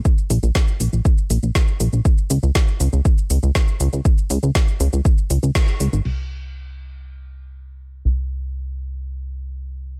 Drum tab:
CC |----------------|----------------|----------------|x---------------|
HH |--o---o---o---o-|--o---o---o---o-|--o---o---o---o-|----------------|
SH |xxxxxxxxxxxxxxxx|xxxxxxxxxxxxxxxx|xxxxxxxxxxxxxxxx|----------------|
SD |----o-------o---|----o-------o---|----o-------o---|----------------|
BD |o---o---o---o---|o---o---o---o---|o---o---o---o---|----------------|

CC |----------------|
HH |----------------|
SH |----------------|
SD |----------------|
BD |----------------|